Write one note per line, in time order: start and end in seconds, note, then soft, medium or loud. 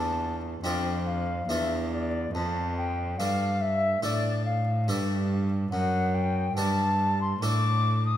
0.00 0.60 E2 soft
0.00 0.62 E2 medium
0.00 0.40 A3 soft
0.00 0.41 D4 soft
0.00 0.41 F4 soft
0.00 0.35 A5 medium
0.63 1.47 F2 medium
0.63 1.45 F2 soft
0.63 1.25 A3 soft
0.63 1.25 D4 soft
0.63 1.26 F4 soft
0.63 1.08 G5 medium
1.06 1.51 F5 medium
1.48 2.32 E2 medium
1.48 2.30 E2 soft
1.48 2.11 A3 soft
1.48 2.11 D4 soft
1.48 2.11 F4 soft
1.48 1.90 E5 medium
1.91 2.33 D5 medium
2.33 3.19 F2 medium
2.33 3.15 F2 soft
2.33 2.76 A5 medium
2.78 3.20 G5 medium
3.18 4.02 G2 medium
3.18 4.00 G2 soft
3.18 3.80 A3 soft
3.18 3.80 D4 soft
3.18 3.80 A4 soft
3.18 3.63 F5 medium
3.61 4.03 E5 loud
4.02 4.89 A2 medium
4.02 4.83 A2 soft
4.02 4.64 A3 medium
4.02 4.64 D4 soft
4.02 4.64 A4 medium
4.02 4.45 D5 medium
4.45 4.87 F5 medium
4.87 5.71 G2 medium
4.87 5.68 G2 medium
4.87 5.49 A3 soft
4.87 5.49 D4 soft
4.87 5.49 A4 soft
5.71 6.55 F#2 medium
5.71 6.53 F#2 medium
5.71 6.16 F#5 medium
6.14 6.56 G5 medium
6.56 7.40 G2 medium
6.56 7.38 G2 medium
6.56 7.18 A3 soft
6.56 7.19 D4 soft
6.56 7.19 A4 medium
6.56 7.19 A5 loud
7.21 7.43 C6 medium
7.41 8.17 A2 medium
7.41 8.03 A3 medium
7.41 8.03 D4 soft
7.41 8.04 A4 medium
7.41 8.05 D6 medium
8.06 8.17 D#6 medium